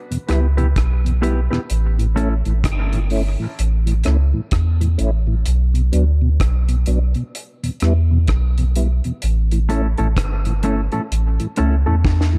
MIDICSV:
0, 0, Header, 1, 5, 480
1, 0, Start_track
1, 0, Tempo, 940439
1, 869, Time_signature, 4, 2, 24, 8
1, 6321, End_track
2, 0, Start_track
2, 0, Title_t, "Clean electric guitar"
2, 0, Program_c, 0, 27
2, 146, Note_on_c, 0, 59, 69
2, 148, Note_on_c, 0, 64, 77
2, 150, Note_on_c, 0, 67, 68
2, 152, Note_on_c, 0, 71, 80
2, 231, Note_off_c, 0, 59, 0
2, 232, Note_off_c, 0, 64, 0
2, 233, Note_off_c, 0, 67, 0
2, 234, Note_off_c, 0, 71, 0
2, 292, Note_on_c, 0, 71, 59
2, 294, Note_on_c, 0, 64, 58
2, 294, Note_on_c, 0, 67, 59
2, 297, Note_on_c, 0, 59, 50
2, 335, Note_off_c, 0, 71, 0
2, 336, Note_off_c, 0, 67, 0
2, 337, Note_off_c, 0, 64, 0
2, 338, Note_off_c, 0, 59, 0
2, 622, Note_on_c, 0, 59, 80
2, 624, Note_on_c, 0, 64, 88
2, 627, Note_on_c, 0, 67, 85
2, 627, Note_on_c, 0, 71, 86
2, 709, Note_off_c, 0, 59, 0
2, 710, Note_off_c, 0, 64, 0
2, 711, Note_off_c, 0, 67, 0
2, 711, Note_off_c, 0, 71, 0
2, 768, Note_on_c, 0, 71, 55
2, 772, Note_on_c, 0, 64, 46
2, 772, Note_on_c, 0, 67, 53
2, 773, Note_on_c, 0, 59, 46
2, 813, Note_off_c, 0, 71, 0
2, 815, Note_off_c, 0, 64, 0
2, 815, Note_off_c, 0, 67, 0
2, 816, Note_off_c, 0, 59, 0
2, 1101, Note_on_c, 0, 57, 72
2, 1103, Note_on_c, 0, 61, 76
2, 1105, Note_on_c, 0, 64, 79
2, 1108, Note_on_c, 0, 69, 79
2, 1188, Note_off_c, 0, 57, 0
2, 1189, Note_off_c, 0, 61, 0
2, 1190, Note_off_c, 0, 64, 0
2, 1191, Note_off_c, 0, 69, 0
2, 4945, Note_on_c, 0, 57, 81
2, 4949, Note_on_c, 0, 61, 80
2, 4950, Note_on_c, 0, 64, 85
2, 4952, Note_on_c, 0, 69, 87
2, 5030, Note_off_c, 0, 57, 0
2, 5032, Note_off_c, 0, 61, 0
2, 5033, Note_off_c, 0, 64, 0
2, 5034, Note_off_c, 0, 69, 0
2, 5095, Note_on_c, 0, 69, 60
2, 5098, Note_on_c, 0, 61, 56
2, 5098, Note_on_c, 0, 64, 61
2, 5100, Note_on_c, 0, 57, 49
2, 5137, Note_off_c, 0, 69, 0
2, 5138, Note_off_c, 0, 61, 0
2, 5138, Note_off_c, 0, 64, 0
2, 5139, Note_off_c, 0, 57, 0
2, 5428, Note_on_c, 0, 57, 74
2, 5432, Note_on_c, 0, 61, 75
2, 5433, Note_on_c, 0, 64, 77
2, 5434, Note_on_c, 0, 69, 85
2, 5512, Note_off_c, 0, 57, 0
2, 5514, Note_off_c, 0, 61, 0
2, 5514, Note_off_c, 0, 64, 0
2, 5515, Note_off_c, 0, 69, 0
2, 5576, Note_on_c, 0, 64, 54
2, 5576, Note_on_c, 0, 69, 58
2, 5578, Note_on_c, 0, 61, 46
2, 5580, Note_on_c, 0, 57, 46
2, 5617, Note_off_c, 0, 69, 0
2, 5618, Note_off_c, 0, 61, 0
2, 5618, Note_off_c, 0, 64, 0
2, 5620, Note_off_c, 0, 57, 0
2, 5907, Note_on_c, 0, 57, 74
2, 5909, Note_on_c, 0, 61, 76
2, 5912, Note_on_c, 0, 64, 82
2, 5913, Note_on_c, 0, 69, 80
2, 5992, Note_off_c, 0, 57, 0
2, 5992, Note_off_c, 0, 61, 0
2, 5994, Note_off_c, 0, 64, 0
2, 5994, Note_off_c, 0, 69, 0
2, 6054, Note_on_c, 0, 69, 57
2, 6056, Note_on_c, 0, 64, 51
2, 6059, Note_on_c, 0, 57, 48
2, 6059, Note_on_c, 0, 61, 50
2, 6097, Note_off_c, 0, 69, 0
2, 6098, Note_off_c, 0, 64, 0
2, 6099, Note_off_c, 0, 57, 0
2, 6099, Note_off_c, 0, 61, 0
2, 6321, End_track
3, 0, Start_track
3, 0, Title_t, "Tonewheel organ"
3, 0, Program_c, 1, 16
3, 54, Note_on_c, 1, 47, 54
3, 55, Note_on_c, 1, 40, 59
3, 93, Note_off_c, 1, 40, 0
3, 93, Note_off_c, 1, 47, 0
3, 145, Note_on_c, 1, 59, 67
3, 146, Note_on_c, 1, 55, 73
3, 147, Note_on_c, 1, 64, 76
3, 207, Note_off_c, 1, 55, 0
3, 207, Note_off_c, 1, 59, 0
3, 208, Note_off_c, 1, 64, 0
3, 295, Note_on_c, 1, 40, 53
3, 296, Note_on_c, 1, 47, 51
3, 334, Note_off_c, 1, 40, 0
3, 334, Note_off_c, 1, 47, 0
3, 534, Note_on_c, 1, 40, 56
3, 535, Note_on_c, 1, 47, 57
3, 573, Note_off_c, 1, 40, 0
3, 574, Note_off_c, 1, 47, 0
3, 627, Note_on_c, 1, 55, 69
3, 628, Note_on_c, 1, 59, 65
3, 629, Note_on_c, 1, 64, 73
3, 688, Note_off_c, 1, 55, 0
3, 688, Note_off_c, 1, 59, 0
3, 689, Note_off_c, 1, 64, 0
3, 775, Note_on_c, 1, 40, 57
3, 775, Note_on_c, 1, 47, 52
3, 813, Note_off_c, 1, 40, 0
3, 813, Note_off_c, 1, 47, 0
3, 1015, Note_on_c, 1, 45, 53
3, 1015, Note_on_c, 1, 52, 50
3, 1053, Note_off_c, 1, 45, 0
3, 1053, Note_off_c, 1, 52, 0
3, 1106, Note_on_c, 1, 57, 67
3, 1108, Note_on_c, 1, 61, 65
3, 1110, Note_on_c, 1, 64, 74
3, 1167, Note_off_c, 1, 57, 0
3, 1168, Note_off_c, 1, 61, 0
3, 1169, Note_off_c, 1, 64, 0
3, 1255, Note_on_c, 1, 45, 53
3, 1255, Note_on_c, 1, 52, 57
3, 1293, Note_off_c, 1, 45, 0
3, 1293, Note_off_c, 1, 52, 0
3, 1493, Note_on_c, 1, 45, 54
3, 1494, Note_on_c, 1, 52, 53
3, 1532, Note_off_c, 1, 45, 0
3, 1533, Note_off_c, 1, 52, 0
3, 1585, Note_on_c, 1, 57, 68
3, 1588, Note_on_c, 1, 61, 62
3, 1590, Note_on_c, 1, 64, 75
3, 1647, Note_off_c, 1, 57, 0
3, 1648, Note_off_c, 1, 61, 0
3, 1649, Note_off_c, 1, 64, 0
3, 1732, Note_on_c, 1, 45, 56
3, 1732, Note_on_c, 1, 52, 54
3, 1772, Note_off_c, 1, 45, 0
3, 1772, Note_off_c, 1, 52, 0
3, 1971, Note_on_c, 1, 52, 57
3, 1972, Note_on_c, 1, 45, 57
3, 2011, Note_off_c, 1, 52, 0
3, 2012, Note_off_c, 1, 45, 0
3, 2067, Note_on_c, 1, 57, 72
3, 2068, Note_on_c, 1, 61, 64
3, 2068, Note_on_c, 1, 64, 79
3, 2127, Note_off_c, 1, 57, 0
3, 2128, Note_off_c, 1, 61, 0
3, 2128, Note_off_c, 1, 64, 0
3, 2213, Note_on_c, 1, 52, 56
3, 2214, Note_on_c, 1, 45, 54
3, 2252, Note_off_c, 1, 52, 0
3, 2253, Note_off_c, 1, 45, 0
3, 2453, Note_on_c, 1, 45, 53
3, 2454, Note_on_c, 1, 52, 54
3, 2492, Note_off_c, 1, 45, 0
3, 2493, Note_off_c, 1, 52, 0
3, 2542, Note_on_c, 1, 57, 68
3, 2542, Note_on_c, 1, 61, 61
3, 2546, Note_on_c, 1, 64, 75
3, 2605, Note_off_c, 1, 57, 0
3, 2605, Note_off_c, 1, 61, 0
3, 2607, Note_off_c, 1, 64, 0
3, 2690, Note_on_c, 1, 52, 55
3, 2691, Note_on_c, 1, 45, 52
3, 2731, Note_off_c, 1, 45, 0
3, 2731, Note_off_c, 1, 52, 0
3, 2929, Note_on_c, 1, 47, 51
3, 2970, Note_off_c, 1, 47, 0
3, 3022, Note_on_c, 1, 54, 67
3, 3023, Note_on_c, 1, 59, 67
3, 3023, Note_on_c, 1, 62, 79
3, 3085, Note_off_c, 1, 54, 0
3, 3086, Note_off_c, 1, 59, 0
3, 3086, Note_off_c, 1, 62, 0
3, 3172, Note_on_c, 1, 47, 57
3, 3212, Note_off_c, 1, 47, 0
3, 3412, Note_on_c, 1, 47, 55
3, 3452, Note_off_c, 1, 47, 0
3, 3506, Note_on_c, 1, 54, 72
3, 3507, Note_on_c, 1, 59, 63
3, 3508, Note_on_c, 1, 62, 75
3, 3567, Note_off_c, 1, 54, 0
3, 3568, Note_off_c, 1, 59, 0
3, 3568, Note_off_c, 1, 62, 0
3, 3652, Note_on_c, 1, 47, 55
3, 3692, Note_off_c, 1, 47, 0
3, 3896, Note_on_c, 1, 40, 56
3, 3897, Note_on_c, 1, 47, 56
3, 3934, Note_off_c, 1, 40, 0
3, 3934, Note_off_c, 1, 47, 0
3, 3990, Note_on_c, 1, 55, 74
3, 3991, Note_on_c, 1, 64, 80
3, 3992, Note_on_c, 1, 59, 65
3, 4049, Note_off_c, 1, 55, 0
3, 4050, Note_off_c, 1, 59, 0
3, 4050, Note_off_c, 1, 64, 0
3, 4140, Note_on_c, 1, 40, 57
3, 4140, Note_on_c, 1, 47, 52
3, 4176, Note_off_c, 1, 40, 0
3, 4176, Note_off_c, 1, 47, 0
3, 4380, Note_on_c, 1, 47, 52
3, 4381, Note_on_c, 1, 40, 56
3, 4416, Note_off_c, 1, 40, 0
3, 4416, Note_off_c, 1, 47, 0
3, 4471, Note_on_c, 1, 55, 70
3, 4473, Note_on_c, 1, 59, 60
3, 4474, Note_on_c, 1, 64, 71
3, 4530, Note_off_c, 1, 55, 0
3, 4531, Note_off_c, 1, 59, 0
3, 4531, Note_off_c, 1, 64, 0
3, 4619, Note_on_c, 1, 40, 55
3, 4619, Note_on_c, 1, 47, 53
3, 4655, Note_off_c, 1, 40, 0
3, 4655, Note_off_c, 1, 47, 0
3, 4860, Note_on_c, 1, 52, 51
3, 4861, Note_on_c, 1, 45, 51
3, 4896, Note_off_c, 1, 52, 0
3, 4897, Note_off_c, 1, 45, 0
3, 4951, Note_on_c, 1, 57, 71
3, 4953, Note_on_c, 1, 61, 67
3, 4955, Note_on_c, 1, 64, 76
3, 5010, Note_off_c, 1, 57, 0
3, 5011, Note_off_c, 1, 61, 0
3, 5012, Note_off_c, 1, 64, 0
3, 5101, Note_on_c, 1, 52, 55
3, 5103, Note_on_c, 1, 45, 54
3, 5137, Note_off_c, 1, 45, 0
3, 5137, Note_off_c, 1, 52, 0
3, 5339, Note_on_c, 1, 45, 57
3, 5339, Note_on_c, 1, 52, 57
3, 5375, Note_off_c, 1, 52, 0
3, 5376, Note_off_c, 1, 45, 0
3, 5431, Note_on_c, 1, 57, 69
3, 5433, Note_on_c, 1, 61, 64
3, 5433, Note_on_c, 1, 64, 74
3, 5490, Note_off_c, 1, 57, 0
3, 5491, Note_off_c, 1, 61, 0
3, 5491, Note_off_c, 1, 64, 0
3, 5579, Note_on_c, 1, 45, 57
3, 5580, Note_on_c, 1, 52, 54
3, 5616, Note_off_c, 1, 45, 0
3, 5616, Note_off_c, 1, 52, 0
3, 5817, Note_on_c, 1, 52, 54
3, 5818, Note_on_c, 1, 45, 54
3, 5855, Note_off_c, 1, 45, 0
3, 5855, Note_off_c, 1, 52, 0
3, 5910, Note_on_c, 1, 57, 69
3, 5912, Note_on_c, 1, 61, 65
3, 5912, Note_on_c, 1, 64, 81
3, 5969, Note_off_c, 1, 57, 0
3, 5970, Note_off_c, 1, 64, 0
3, 5971, Note_off_c, 1, 61, 0
3, 6059, Note_on_c, 1, 45, 54
3, 6059, Note_on_c, 1, 52, 54
3, 6096, Note_off_c, 1, 45, 0
3, 6096, Note_off_c, 1, 52, 0
3, 6295, Note_on_c, 1, 52, 51
3, 6296, Note_on_c, 1, 45, 54
3, 6321, Note_off_c, 1, 45, 0
3, 6321, Note_off_c, 1, 52, 0
3, 6321, End_track
4, 0, Start_track
4, 0, Title_t, "Sub bass"
4, 0, Program_c, 2, 38
4, 149, Note_on_c, 2, 37, 98
4, 378, Note_off_c, 2, 37, 0
4, 391, Note_on_c, 2, 35, 89
4, 758, Note_off_c, 2, 35, 0
4, 870, Note_on_c, 2, 33, 102
4, 1238, Note_off_c, 2, 33, 0
4, 1259, Note_on_c, 2, 33, 86
4, 1346, Note_off_c, 2, 33, 0
4, 1350, Note_on_c, 2, 31, 97
4, 1717, Note_off_c, 2, 31, 0
4, 1833, Note_on_c, 2, 33, 96
4, 2059, Note_off_c, 2, 33, 0
4, 2075, Note_on_c, 2, 37, 94
4, 2211, Note_off_c, 2, 37, 0
4, 2308, Note_on_c, 2, 40, 83
4, 2537, Note_off_c, 2, 40, 0
4, 2551, Note_on_c, 2, 33, 83
4, 2778, Note_off_c, 2, 33, 0
4, 2791, Note_on_c, 2, 35, 102
4, 3019, Note_off_c, 2, 35, 0
4, 3030, Note_on_c, 2, 38, 89
4, 3258, Note_off_c, 2, 38, 0
4, 3269, Note_on_c, 2, 35, 96
4, 3498, Note_off_c, 2, 35, 0
4, 3508, Note_on_c, 2, 35, 79
4, 3648, Note_off_c, 2, 35, 0
4, 3990, Note_on_c, 2, 40, 98
4, 4218, Note_off_c, 2, 40, 0
4, 4230, Note_on_c, 2, 35, 90
4, 4598, Note_off_c, 2, 35, 0
4, 4712, Note_on_c, 2, 33, 98
4, 5079, Note_off_c, 2, 33, 0
4, 5100, Note_on_c, 2, 33, 97
4, 5187, Note_off_c, 2, 33, 0
4, 5189, Note_on_c, 2, 31, 88
4, 5558, Note_off_c, 2, 31, 0
4, 5673, Note_on_c, 2, 33, 93
4, 5811, Note_off_c, 2, 33, 0
4, 5916, Note_on_c, 2, 37, 92
4, 6053, Note_off_c, 2, 37, 0
4, 6063, Note_on_c, 2, 40, 80
4, 6147, Note_off_c, 2, 40, 0
4, 6150, Note_on_c, 2, 40, 85
4, 6321, Note_off_c, 2, 40, 0
4, 6321, End_track
5, 0, Start_track
5, 0, Title_t, "Drums"
5, 60, Note_on_c, 9, 42, 58
5, 111, Note_off_c, 9, 42, 0
5, 146, Note_on_c, 9, 42, 73
5, 158, Note_on_c, 9, 37, 69
5, 197, Note_off_c, 9, 42, 0
5, 209, Note_off_c, 9, 37, 0
5, 296, Note_on_c, 9, 42, 30
5, 347, Note_off_c, 9, 42, 0
5, 389, Note_on_c, 9, 36, 107
5, 389, Note_on_c, 9, 42, 81
5, 397, Note_on_c, 9, 37, 107
5, 440, Note_off_c, 9, 36, 0
5, 440, Note_off_c, 9, 42, 0
5, 448, Note_off_c, 9, 37, 0
5, 542, Note_on_c, 9, 42, 50
5, 593, Note_off_c, 9, 42, 0
5, 629, Note_on_c, 9, 42, 66
5, 681, Note_off_c, 9, 42, 0
5, 781, Note_on_c, 9, 37, 62
5, 832, Note_off_c, 9, 37, 0
5, 866, Note_on_c, 9, 42, 94
5, 917, Note_off_c, 9, 42, 0
5, 1018, Note_on_c, 9, 42, 49
5, 1069, Note_off_c, 9, 42, 0
5, 1109, Note_on_c, 9, 42, 59
5, 1160, Note_off_c, 9, 42, 0
5, 1252, Note_on_c, 9, 42, 31
5, 1303, Note_off_c, 9, 42, 0
5, 1347, Note_on_c, 9, 36, 102
5, 1350, Note_on_c, 9, 42, 93
5, 1354, Note_on_c, 9, 37, 106
5, 1398, Note_off_c, 9, 36, 0
5, 1401, Note_off_c, 9, 42, 0
5, 1405, Note_off_c, 9, 37, 0
5, 1494, Note_on_c, 9, 42, 47
5, 1545, Note_off_c, 9, 42, 0
5, 1583, Note_on_c, 9, 46, 50
5, 1634, Note_off_c, 9, 46, 0
5, 1831, Note_on_c, 9, 42, 99
5, 1882, Note_off_c, 9, 42, 0
5, 1976, Note_on_c, 9, 42, 56
5, 2027, Note_off_c, 9, 42, 0
5, 2060, Note_on_c, 9, 42, 72
5, 2072, Note_on_c, 9, 37, 72
5, 2111, Note_off_c, 9, 42, 0
5, 2123, Note_off_c, 9, 37, 0
5, 2303, Note_on_c, 9, 42, 80
5, 2307, Note_on_c, 9, 36, 107
5, 2311, Note_on_c, 9, 37, 103
5, 2354, Note_off_c, 9, 42, 0
5, 2358, Note_off_c, 9, 36, 0
5, 2362, Note_off_c, 9, 37, 0
5, 2456, Note_on_c, 9, 42, 49
5, 2507, Note_off_c, 9, 42, 0
5, 2546, Note_on_c, 9, 42, 69
5, 2597, Note_off_c, 9, 42, 0
5, 2785, Note_on_c, 9, 42, 89
5, 2836, Note_off_c, 9, 42, 0
5, 2935, Note_on_c, 9, 42, 46
5, 2986, Note_off_c, 9, 42, 0
5, 3026, Note_on_c, 9, 42, 61
5, 3077, Note_off_c, 9, 42, 0
5, 3266, Note_on_c, 9, 36, 102
5, 3267, Note_on_c, 9, 42, 90
5, 3271, Note_on_c, 9, 37, 107
5, 3317, Note_off_c, 9, 36, 0
5, 3318, Note_off_c, 9, 42, 0
5, 3322, Note_off_c, 9, 37, 0
5, 3412, Note_on_c, 9, 42, 45
5, 3463, Note_off_c, 9, 42, 0
5, 3501, Note_on_c, 9, 42, 69
5, 3552, Note_off_c, 9, 42, 0
5, 3647, Note_on_c, 9, 42, 33
5, 3698, Note_off_c, 9, 42, 0
5, 3751, Note_on_c, 9, 42, 98
5, 3802, Note_off_c, 9, 42, 0
5, 3898, Note_on_c, 9, 42, 60
5, 3949, Note_off_c, 9, 42, 0
5, 3982, Note_on_c, 9, 42, 67
5, 3994, Note_on_c, 9, 37, 70
5, 4033, Note_off_c, 9, 42, 0
5, 4045, Note_off_c, 9, 37, 0
5, 4223, Note_on_c, 9, 42, 78
5, 4228, Note_on_c, 9, 36, 106
5, 4231, Note_on_c, 9, 37, 105
5, 4274, Note_off_c, 9, 42, 0
5, 4279, Note_off_c, 9, 36, 0
5, 4282, Note_off_c, 9, 37, 0
5, 4377, Note_on_c, 9, 42, 45
5, 4429, Note_off_c, 9, 42, 0
5, 4469, Note_on_c, 9, 42, 69
5, 4520, Note_off_c, 9, 42, 0
5, 4615, Note_on_c, 9, 42, 36
5, 4666, Note_off_c, 9, 42, 0
5, 4705, Note_on_c, 9, 42, 91
5, 4756, Note_off_c, 9, 42, 0
5, 4856, Note_on_c, 9, 42, 45
5, 4907, Note_off_c, 9, 42, 0
5, 4949, Note_on_c, 9, 42, 64
5, 5000, Note_off_c, 9, 42, 0
5, 5091, Note_on_c, 9, 42, 33
5, 5142, Note_off_c, 9, 42, 0
5, 5188, Note_on_c, 9, 36, 97
5, 5190, Note_on_c, 9, 42, 92
5, 5194, Note_on_c, 9, 37, 105
5, 5239, Note_off_c, 9, 36, 0
5, 5242, Note_off_c, 9, 42, 0
5, 5245, Note_off_c, 9, 37, 0
5, 5334, Note_on_c, 9, 42, 46
5, 5385, Note_off_c, 9, 42, 0
5, 5425, Note_on_c, 9, 42, 68
5, 5476, Note_off_c, 9, 42, 0
5, 5572, Note_on_c, 9, 42, 34
5, 5623, Note_off_c, 9, 42, 0
5, 5675, Note_on_c, 9, 42, 96
5, 5726, Note_off_c, 9, 42, 0
5, 5817, Note_on_c, 9, 42, 56
5, 5868, Note_off_c, 9, 42, 0
5, 5902, Note_on_c, 9, 42, 68
5, 5953, Note_off_c, 9, 42, 0
5, 6148, Note_on_c, 9, 36, 104
5, 6151, Note_on_c, 9, 38, 53
5, 6199, Note_off_c, 9, 36, 0
5, 6202, Note_off_c, 9, 38, 0
5, 6231, Note_on_c, 9, 38, 51
5, 6282, Note_off_c, 9, 38, 0
5, 6321, End_track
0, 0, End_of_file